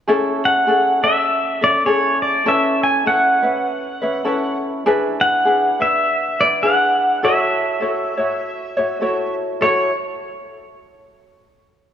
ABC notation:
X:1
M:4/4
L:1/8
Q:"Swing" 1/4=100
K:A
V:1 name="Pedal steel guitar"
z f2 e2 d c d | e g f4- f z | z f2 e2 d f2 | e6- e z |
c z6 z |]
V:2 name="Ukulele"
[CEGA]2 [CEGA] [CEA]2 [CEA] [CEGA]2 | [CEAB]2 [CEAB] [CEB]2 [CEB] [CEAB]2 | [DEGB]2 [DEGB] [DEB]2 [DEB] [DEGB]2 | [EFAc]2 [EFAc] [EFc]2 [EFc] [EFAc]2 |
[EFAc] z6 z |]